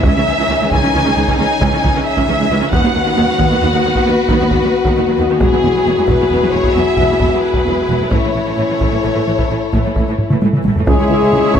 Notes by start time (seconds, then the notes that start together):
Already playing: C#4
0.03 C#2 D#3 E3 C#4 D#4 G#4 E5, taiko
0.16 C#2 E3 C#4
0.27 C#2 E3 G#3
0.38 C#2 E3 C#4
0.49 C#2 E3 C#4
0.60 C#2 E3 G#3
0.71 C#2 E3 C#4 G#5, taiko
0.83 C#2 E3 C#4
0.94 C#2 E3 C#4
1.05 C#2 E3 C#4
1.16 C#2 E3 G#3
1.28 C#2 E3 C#4, taiko
1.39 C#2 E3 C#4 G#5
1.61 C#2 E3 C#4, taiko
1.73 C#2 E3 C#4
1.83 C#2 E3 C#4, taiko
1.95 C#2 E3 C#4
2.05 E5
2.17 C#2 E3 C#4, taiko
2.28 C#2 E3 C#4
2.39 C#2 E3 G#3
2.50 C#2 E3 C#4
2.60 C#2 E3 C#4
2.72 D#2 D#3 B3 F#4 B4 F#5, taiko
2.84 D#2 D#3 B3
2.95 D#2 D#3 F#3
3.05 D#2 D#3 B3
3.16 D#2 D#3 B3
3.27 D#2 D#3 F#3
3.38 D#2 D#3 B3, taiko
3.50 D#2 D#3 B3
3.61 D#2 D#3 B3
3.72 D#2 D#3 B3
3.84 D#2 D#3 F#3
3.95 D#2 D#3 B3, taiko
4.05 D#2 D#3 B3 B4
4.29 D#2 D#3 B3, taiko
4.40 D#2 D#3 B3
4.51 D#2 D#3 B3, taiko
4.63 D#2 D#3 B3
4.85 D#2 D#3 B3, taiko
4.97 D#2 D#3 B3
5.08 D#2 D#3 F#3
5.18 D#2 D#3 B3
5.29 D#2 D#3 B3
5.41 E1 E2 F#3 B3 E4 G#4, taiko
5.52 E2 F#3 B3
5.63 E1 E2 F#3 G#3
5.75 E2 F#3 B3
5.85 E1 E2 F#3 B3
5.97 E2 F#3 G#3
6.08 E1 E2 F#3 B3 B4, taiko
6.21 E2 F#3 B3
6.31 E1 E2 F#3 B3
6.42 E2 F#3 B3
6.52 E1 E2 F#3 G#3 C#5
6.64 E2 F#3 B3, taiko
6.74 E1 E2 F#3 B3 E5
6.97 E1 E2 F#3 B3, taiko
7.11 E2 F#3 B3
7.20 E1 E2 F#3 B3, taiko
7.33 E2 F#3 B3
7.42 B4
7.54 E2 F#3 B3, taiko
7.66 E1 E2 F#3 B3
7.78 E2 F#3 G#3
7.89 E1 E2 F#3 B3
8.00 E2 F#3 B3
8.11 A1 A2 E3 A3 C#4 E4 A4 C#5, taiko
8.23 A2 E3 A3
8.35 A1 A2 E3
8.46 A2 E3 A3
8.57 A1 A2 E3 A3
8.69 A2 E3
8.80 A1 A2 E3 A3, taiko
8.91 A2 E3 A3
9.03 A1 A2 E3 A3
9.15 A2 E3 A3
9.26 A1 A2 E3
9.38 A2 E3 A3, taiko
9.50 A1 A2 E3 A3
9.73 A1 A2 E3 A3, taiko
9.85 A2 E3 A3
9.96 A1 A2 E3 A3, taiko
10.08 A2 E3 A3
10.18 taiko low-mid
10.30 A2 E3 A3, taiko mid
10.42 A1 A2 E3 A3, taiko high
10.53 A2 E3, taiko mid
10.65 A1 A2 E3 A3, taiko high
10.76 A2 E3 A3, taiko low
10.87 C#2 G#3 E4 G#4 C#5 E5, taiko
10.99 C#2 G#4
11.09 C#2 E4
11.21 C#2 G#4
11.33 C#2 G#4, taiko mid
11.44 C#2 E4
11.54 C#2 C#4 G#4 C#5, taiko